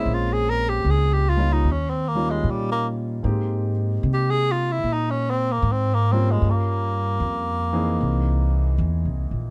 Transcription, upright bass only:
X:1
M:4/4
L:1/8
Q:"Swing" 1/4=76
K:Ab
V:1 name="Upright bass" clef=bass
B,,,2 D,,2 E,,2 B,,2 | A,,2 C,2 B,,2 A,,2 | G,,2 F,,2 C,,2 (3=E,, C,, B,,, |]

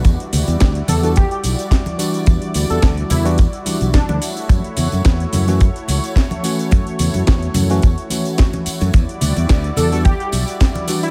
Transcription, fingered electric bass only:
X:1
M:4/4
L:1/16
Q:"Swing 16ths" 1/4=108
K:Edor
V:1 name="Fingered electric bass" clef=bass
E,, z D,, E,, D,, z E,,2 z2 B,,, z4 z | E,, z D,, E,, D,, z E,,2 z3 B,,, z D,, z2 | F,, z E,, F,, E,, z F,,2 z2 C,, z4 z | F,, z E,, F,, E,, z F,,2 E,, z6 F,, |
E,, z D,, E,, D,, z E,,2 z2 B,,, z4 z |]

